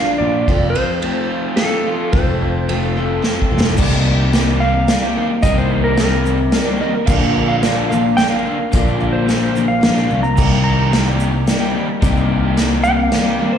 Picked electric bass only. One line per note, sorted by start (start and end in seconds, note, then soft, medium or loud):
0.21 0.46 A#1 medium
0.48 0.73 F1 medium
2.14 3.19 F1 medium
3.52 3.77 F1 medium
3.79 4.85 C2 loud
5.43 6.49 C2 medium
7.08 8.14 A#1 loud
8.73 9.79 A#1 loud
9.84 10.08 A#1 medium
10.12 10.36 C2 medium
10.38 11.44 C2 medium
12.03 13.08 C2 medium